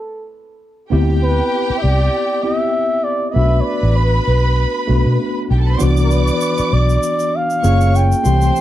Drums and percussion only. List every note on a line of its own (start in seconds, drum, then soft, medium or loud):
5.80 shaker medium
5.97 shaker soft
6.11 shaker soft
6.27 shaker soft
6.41 shaker medium
6.58 shaker soft
6.89 shaker soft
7.03 shaker medium
7.19 shaker soft
7.50 shaker soft
7.64 shaker medium
7.81 shaker soft
7.95 shaker soft
8.12 shaker soft
8.25 shaker medium
8.41 shaker soft
8.56 shaker soft